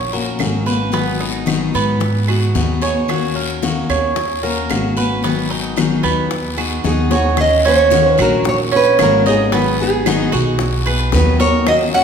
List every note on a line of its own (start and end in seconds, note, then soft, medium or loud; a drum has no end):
0.00 0.36 A#1 medium
0.00 0.11 C#5 medium
0.13 0.38 A#3 soft
0.13 0.39 C#4 soft
0.13 0.39 F#4 soft
0.13 0.65 A#4 medium
0.13 high bongo soft
0.13 high conga soft
0.39 1.68 G#1 medium
0.39 0.65 D#3 medium
0.39 0.65 A#3 medium
0.39 0.65 C#4 medium
0.39 0.65 F#4 medium
0.39 high bongo soft
0.39 low bongo medium
0.39 high conga medium
0.39 short guiro medium
0.39 claves medium
0.66 0.92 A#3 soft
0.66 0.93 C#4 soft
0.66 0.92 F#4 medium
0.66 0.93 B4 medium
0.66 high conga medium
0.66 short guiro medium
0.92 1.45 D#3 medium
0.92 1.45 F#3 medium
0.92 1.45 B3 medium
0.92 1.20 B3 medium
0.92 1.46 D#4 medium
0.92 1.46 G#4 medium
0.92 high bongo medium
0.92 high conga soft
0.92 long guiro medium
1.20 1.73 D#4 medium
1.20 high bongo soft
1.20 high conga soft
1.46 1.99 D#3 medium
1.46 1.99 F#3 medium
1.46 1.99 B3 medium
1.46 2.00 D#4 medium
1.46 2.00 G#4 medium
1.46 high bongo soft
1.46 high conga medium
1.46 short guiro medium
1.46 claves medium
1.74 2.51 G#2 medium
1.74 2.27 B3 medium
1.74 high bongo soft
1.74 short guiro medium
2.00 muted steel-string acoustic guitar stroke medium
2.00 high bongo medium
2.00 high conga soft
2.00 long guiro medium
2.27 2.54 B3 soft
2.27 2.54 D#4 soft
2.27 2.80 F#4 medium
2.27 2.53 G#4 soft
2.27 high bongo soft
2.27 high conga soft
2.27 claves medium
2.55 3.83 D#2 medium
2.55 2.81 D#3 medium
2.55 2.81 F#3 medium
2.55 2.81 B3 medium
2.55 2.81 D#4 medium
2.55 2.81 G#4 medium
2.55 high bongo soft
2.55 low bongo medium
2.55 high conga medium
2.55 short guiro medium
2.82 3.08 B3 soft
2.82 3.08 D#4 soft
2.82 3.08 G#4 soft
2.82 3.34 C#5 medium
2.82 high conga medium
2.82 short guiro medium
3.08 3.61 D#3 medium
3.08 3.61 A#3 medium
3.08 3.62 C#4 medium
3.08 3.62 F#4 medium
3.08 high bongo medium
3.08 long guiro medium
3.08 claves medium
3.36 3.88 A#4 medium
3.36 high bongo soft
3.36 high conga soft
3.62 4.15 D#3 medium
3.62 4.15 A#3 medium
3.62 4.15 C#4 medium
3.62 4.16 F#4 medium
3.62 high bongo medium
3.62 high conga medium
3.62 short guiro medium
3.89 4.66 D#2 medium
3.89 4.42 C#5 medium
3.89 high bongo soft
3.89 high conga medium
3.89 short guiro medium
3.89 claves medium
4.16 muted steel-string acoustic guitar stroke medium
4.16 high bongo medium
4.16 high conga soft
4.16 long guiro medium
4.43 4.69 A#3 soft
4.43 4.69 C#4 soft
4.43 4.69 F#4 soft
4.43 4.95 A#4 medium
4.43 high bongo soft
4.43 high conga soft
4.69 5.98 G#1 medium
4.69 4.96 D#3 medium
4.69 4.96 A#3 medium
4.69 4.96 C#4 medium
4.69 4.96 F#4 medium
4.69 high bongo soft
4.69 low bongo medium
4.69 high conga medium
4.69 short guiro medium
4.69 claves medium
4.97 5.24 A#3 soft
4.97 5.23 C#4 soft
4.97 5.23 F#4 soft
4.97 5.23 B4 medium
4.97 high conga medium
4.97 short guiro medium
5.23 5.77 D#3 medium
5.23 5.77 F#3 medium
5.23 5.50 B3 medium
5.23 5.77 B3 medium
5.23 5.77 D#4 medium
5.23 5.78 G#4 medium
5.23 high bongo medium
5.23 high conga soft
5.23 long guiro medium
5.50 6.03 D#4 medium
5.50 high bongo soft
5.50 high conga soft
5.76 6.29 D#3 medium
5.76 6.30 F#3 medium
5.76 6.30 B3 medium
5.76 6.30 D#4 medium
5.76 6.30 G#4 medium
5.76 high bongo medium
5.76 high conga medium
5.76 short guiro medium
5.76 claves medium
6.03 6.80 D#2 medium
6.03 6.56 B3 medium
6.03 high bongo soft
6.03 short guiro medium
6.31 muted steel-string acoustic guitar stroke medium
6.31 high bongo medium
6.31 high conga soft
6.31 long guiro medium
6.57 6.83 B3 soft
6.57 6.84 D#4 soft
6.57 7.10 F#4 medium
6.57 6.83 G#4 soft
6.57 high bongo soft
6.57 high conga soft
6.57 claves medium
6.84 8.12 D#2 medium
6.84 7.10 D#3 medium
6.84 7.10 F#3 medium
6.84 7.10 B3 medium
6.84 7.10 D#4 medium
6.84 7.09 G#4 medium
6.84 7.13 G#4 medium
6.84 high bongo soft
6.84 low bongo medium
6.84 high conga medium
6.84 short guiro medium
7.10 7.37 B3 soft
7.10 7.37 D#4 soft
7.10 7.40 F#4 medium
7.10 7.37 G#4 soft
7.10 7.37 C#5 medium
7.10 high bongo medium
7.10 high conga medium
7.10 short guiro medium
7.37 7.63 D#3 medium
7.37 7.63 A#3 medium
7.37 7.64 C#4 medium
7.37 7.64 F#4 medium
7.37 7.67 D#5 loud
7.37 high bongo medium
7.37 high conga soft
7.37 long guiro medium
7.37 claves medium
7.65 7.91 A#3 soft
7.65 8.17 C#4 medium
7.65 7.91 C#4 soft
7.65 7.91 F#4 medium
7.65 8.11 C#5 loud
7.65 high conga soft
7.91 8.17 D#3 medium
7.91 8.18 A#3 medium
7.91 8.18 C#4 medium
7.91 8.17 F#4 medium
7.91 high bongo medium
7.91 high conga medium
7.91 short guiro medium
8.11 8.21 B4 loud
8.18 8.95 A#1 medium
8.18 8.44 A#3 soft
8.18 8.44 C#4 soft
8.18 8.44 F#4 soft
8.18 8.71 F#4 medium
8.18 low conga medium
8.18 short guiro medium
8.18 claves medium
8.22 8.48 A#4 medium
8.44 muted steel-string acoustic guitar stroke medium
8.44 high bongo medium
8.44 high conga soft
8.44 low conga medium
8.44 long guiro medium
8.49 8.56 C#5 loud
8.72 8.98 A#3 soft
8.72 9.24 C#4 medium
8.72 8.98 C#4 soft
8.72 8.98 F#4 soft
8.72 high conga soft
8.76 8.99 B4 loud
8.99 10.26 G#1 medium
8.99 9.51 D#3 medium
8.99 9.52 A#3 medium
8.99 9.52 C#4 medium
8.99 9.52 F#4 medium
8.99 9.28 A#4 medium
8.99 high bongo medium
8.99 low bongo medium
8.99 high conga medium
8.99 short guiro medium
8.99 claves medium
9.26 9.52 D#4 medium
9.26 9.81 G#4 medium
9.26 high conga medium
9.26 short guiro medium
9.52 9.78 D#3 medium
9.52 9.79 F#3 medium
9.52 10.04 B3 medium
9.52 9.79 B3 medium
9.52 9.79 D#4 medium
9.52 9.78 G#4 medium
9.52 high bongo medium
9.52 high conga soft
9.52 long guiro medium
9.80 10.06 B3 soft
9.80 10.05 D#4 soft
9.80 10.05 G#4 soft
9.80 10.84 G#4 medium
9.80 high conga soft
10.06 10.32 D#3 medium
10.06 10.32 F#3 medium
10.06 10.32 B3 medium
10.06 10.32 D#4 medium
10.06 10.32 G#4 medium
10.06 high bongo medium
10.06 high conga loud
10.06 short guiro medium
10.06 claves medium
10.32 11.09 B1 loud
10.32 10.59 B3 soft
10.32 10.59 D#4 soft
10.32 10.84 F#4 medium
10.32 10.58 G#4 medium
10.32 high bongo soft
10.32 short guiro medium
10.59 muted steel-string acoustic guitar stroke medium
10.59 high bongo medium
10.59 high conga soft
10.59 long guiro medium
10.86 11.13 B3 soft
10.86 11.13 D#4 soft
10.86 11.12 G#4 soft
10.86 11.38 B4 medium
10.86 high bongo soft
10.86 high conga soft
10.86 claves medium
11.12 12.04 D#2 medium
11.12 11.65 D#3 medium
11.12 11.66 F#3 medium
11.12 11.66 B3 medium
11.12 11.67 D#4 medium
11.12 11.67 G#4 medium
11.12 11.39 B4 medium
11.12 high bongo medium
11.12 low bongo medium
11.12 high conga medium
11.12 short guiro medium
11.40 11.92 A#4 medium
11.40 11.65 C#5 medium
11.40 high bongo soft
11.40 high conga medium
11.40 short guiro medium
11.66 11.92 D#3 medium
11.66 11.93 A#3 medium
11.66 11.93 C#4 medium
11.66 11.92 F#4 medium
11.66 11.75 D#5 loud
11.66 high bongo medium
11.66 high conga soft
11.66 long guiro medium
11.66 claves medium
11.94 12.04 A#3 soft
11.94 12.04 C#4 medium
11.94 12.04 C#4 soft
11.94 12.04 F#4 medium
11.94 12.04 F#5 loud
11.94 high conga soft